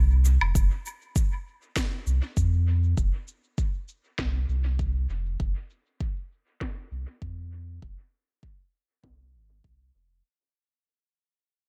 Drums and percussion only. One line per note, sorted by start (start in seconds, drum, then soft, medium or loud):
0.25 cabasa soft
0.41 low woodblock medium
0.55 kick loud
0.55 cabasa medium
0.86 cabasa soft
1.16 kick loud
1.16 cabasa medium
1.76 kick loud
1.76 snare medium
1.76 cabasa medium
2.07 cabasa soft
2.37 kick loud
2.37 cabasa medium
2.97 kick loud
2.97 cabasa soft
3.28 cabasa soft
3.58 kick loud
3.58 cabasa medium
3.88 cabasa soft
4.19 kick loud
4.19 snare medium
4.19 cabasa medium
4.49 cabasa soft
4.79 kick loud
4.79 cabasa medium
5.10 cabasa soft
5.40 kick loud
5.40 cabasa soft
5.70 cabasa soft
6.00 kick loud
6.00 cabasa soft
6.61 kick loud
6.61 snare medium
6.92 cabasa soft
7.22 kick loud
7.82 kick loud
7.82 cabasa soft
8.13 cabasa soft
8.43 kick loud
9.04 kick loud
9.04 snare medium
9.64 kick loud